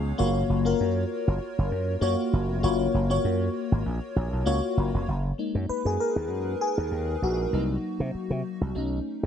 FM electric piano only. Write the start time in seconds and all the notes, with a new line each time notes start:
Already playing: B3 F4 G#4 C5 C#5
0.18 A#3 F4 F#4 C#5
0.65 A#3 F4 F#4 A#4
2.01 A#3 F4 F#4 C#5
2.63 A#3 F4 F#4 C#5
3.10 A#3 F4 F#4 C#5
4.46 A#3 F4 F#4 C#5
5.38 G#3 A#3 D#4
5.69 B4
5.86 G#4
6.00 A#4
6.61 G#4
7.23 F#4
7.53 F#3 A#3 D#4
8.75 A3 C#4 D#4